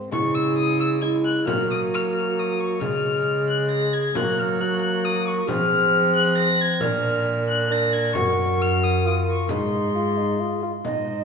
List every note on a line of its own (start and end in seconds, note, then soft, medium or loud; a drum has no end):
0.00 0.11 C4 medium
0.11 1.42 C#3 medium
0.11 0.97 G#3 medium
0.11 0.98 E4 medium
0.11 0.36 C#6 loud
0.11 frame drum medium
0.35 0.57 E6 loud
0.57 0.79 D#6 loud
0.80 0.88 E6 loud
1.01 1.48 G#3 medium
1.01 1.48 E4 medium
1.01 1.09 G#6 loud
1.25 1.46 F#6 loud
1.46 2.82 F#3 medium
1.46 2.81 A#3 medium
1.46 2.81 F#4 medium
1.46 1.69 F6 loud
1.46 frame drum medium
1.71 1.79 D#6 medium
1.94 2.02 F6 loud
2.16 2.41 F6 loud
2.39 2.61 D#6 medium
2.60 2.81 C#6 medium
2.81 4.14 C#3 medium
2.81 4.00 G#3 medium
2.81 4.18 G#4 medium
2.81 3.47 F6 loud
2.81 frame drum medium
3.50 3.70 F#6 medium
3.71 3.95 A#6 loud
3.93 4.18 G#6 loud
4.15 5.46 F#3 medium
4.15 4.59 A#3 medium
4.15 4.60 F#4 medium
4.15 4.41 F#6 loud
4.15 frame drum medium
4.40 4.62 F6 loud
4.60 5.47 A#3 medium
4.60 5.47 F#4 medium
4.60 4.81 F#6 loud
4.81 5.06 F#6 loud
5.05 5.29 D#6 loud
5.28 5.49 C#6 loud
5.47 6.78 F3 medium
5.47 6.78 C4 medium
5.47 6.48 G#4 medium
5.47 6.14 F6 loud
5.47 frame drum medium
6.16 6.37 F#6 loud
6.38 6.62 A#6 loud
6.61 6.82 G#6 loud
6.80 8.16 A#2 medium
6.80 7.69 D4 medium
6.80 7.68 A#4 medium
6.80 7.48 F6 loud
6.80 frame drum medium
7.50 7.73 F#6 loud
7.69 8.17 D4 medium
7.69 8.14 A#4 medium
7.69 7.94 A#6 loud
7.93 8.15 G#6 loud
8.14 9.50 F#2 medium
8.14 9.07 F#4 medium
8.14 9.52 A#4 medium
8.14 8.63 C#6 loud
8.14 frame drum medium
8.62 8.85 F6 loud
8.83 9.05 D#6 loud
9.05 9.49 F4 medium
9.05 9.14 D#6 loud
9.30 9.51 C#6 medium
9.49 10.65 G#2 medium
9.49 9.90 D#4 medium
9.49 10.63 G#4 medium
9.49 10.62 C6 loud
9.49 frame drum medium
9.95 10.18 F4 medium
10.17 10.41 D#4 medium
10.40 10.62 F4 medium
10.62 10.73 F4 medium
10.85 11.24 G#2 medium
10.85 11.24 D#4 medium
10.85 11.24 C5 medium
10.85 11.24 D#5 medium
10.85 frame drum medium